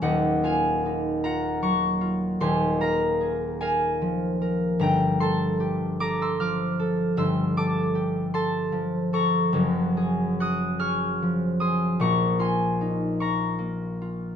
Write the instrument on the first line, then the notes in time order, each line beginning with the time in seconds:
harp
Already playing: F#3 C#4 D#4 A#4 A#5
0.02 D#1 D#2 D#5 F#5
0.44 F4 F5 G#5
0.85 D#4
1.24 F4 F#5 A#5
1.62 F#3 A#5 C#6
2.01 F4
2.40 D#1 D#2 G#5 C6
2.81 A#4 F5 A#5
3.21 G#4
3.61 A#4 F5 G#5
4.02 F3
4.42 A#4
4.79 G1 G2 G5 A#5
5.20 A4 A5 C6
5.60 G4
6.00 A4 A#5 D6
6.22 C6 E6
6.40 F3 D6 F6
6.79 A4
7.17 G1 G2 C6 E6
7.57 A4 A5 D6
7.95 G4
8.34 A4 A5 C6
8.72 F3
9.13 A4 A#5 C#6
9.53 F#1 F#2
9.97 G#4
10.40 F#4 D#6 F#6
10.79 G#4 C#6 F6
11.22 F3
11.60 G#4 C6 D#6
12.00 A#1 A#2 A#5 C#6
12.39 F4 G#5 C6
12.81 D#4
13.20 F4 A#5 C#6
13.59 A#3
14.02 F4